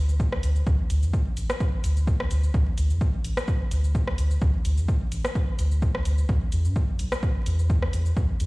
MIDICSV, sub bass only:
0, 0, Header, 1, 2, 480
1, 0, Start_track
1, 0, Tempo, 468750
1, 683, Time_signature, 4, 2, 24, 8
1, 8665, End_track
2, 0, Start_track
2, 0, Title_t, "Sub bass"
2, 0, Program_c, 0, 38
2, 0, Note_on_c, 0, 38, 88
2, 401, Note_off_c, 0, 38, 0
2, 443, Note_on_c, 0, 38, 81
2, 631, Note_off_c, 0, 38, 0
2, 682, Note_on_c, 0, 38, 97
2, 782, Note_off_c, 0, 38, 0
2, 923, Note_on_c, 0, 38, 94
2, 1053, Note_on_c, 0, 41, 102
2, 1068, Note_off_c, 0, 38, 0
2, 1137, Note_off_c, 0, 41, 0
2, 1403, Note_on_c, 0, 33, 96
2, 1502, Note_off_c, 0, 33, 0
2, 1884, Note_on_c, 0, 38, 85
2, 2322, Note_off_c, 0, 38, 0
2, 2364, Note_on_c, 0, 38, 81
2, 2551, Note_off_c, 0, 38, 0
2, 2603, Note_on_c, 0, 38, 101
2, 2702, Note_off_c, 0, 38, 0
2, 2843, Note_on_c, 0, 38, 93
2, 2974, Note_on_c, 0, 41, 105
2, 2989, Note_off_c, 0, 38, 0
2, 3057, Note_off_c, 0, 41, 0
2, 3324, Note_on_c, 0, 33, 102
2, 3423, Note_off_c, 0, 33, 0
2, 3803, Note_on_c, 0, 38, 85
2, 4241, Note_off_c, 0, 38, 0
2, 4283, Note_on_c, 0, 38, 77
2, 4471, Note_off_c, 0, 38, 0
2, 4522, Note_on_c, 0, 38, 99
2, 4622, Note_off_c, 0, 38, 0
2, 4762, Note_on_c, 0, 38, 97
2, 4893, Note_on_c, 0, 41, 97
2, 4908, Note_off_c, 0, 38, 0
2, 4976, Note_off_c, 0, 41, 0
2, 5242, Note_on_c, 0, 33, 98
2, 5342, Note_off_c, 0, 33, 0
2, 5723, Note_on_c, 0, 38, 87
2, 6161, Note_off_c, 0, 38, 0
2, 6201, Note_on_c, 0, 38, 81
2, 6390, Note_off_c, 0, 38, 0
2, 6441, Note_on_c, 0, 40, 95
2, 6541, Note_off_c, 0, 40, 0
2, 6681, Note_on_c, 0, 40, 94
2, 6811, Note_on_c, 0, 43, 102
2, 6827, Note_off_c, 0, 40, 0
2, 6896, Note_off_c, 0, 43, 0
2, 7161, Note_on_c, 0, 35, 95
2, 7261, Note_off_c, 0, 35, 0
2, 7642, Note_on_c, 0, 40, 88
2, 8081, Note_off_c, 0, 40, 0
2, 8122, Note_on_c, 0, 40, 80
2, 8310, Note_off_c, 0, 40, 0
2, 8362, Note_on_c, 0, 40, 99
2, 8462, Note_off_c, 0, 40, 0
2, 8602, Note_on_c, 0, 40, 95
2, 8665, Note_off_c, 0, 40, 0
2, 8665, End_track
0, 0, End_of_file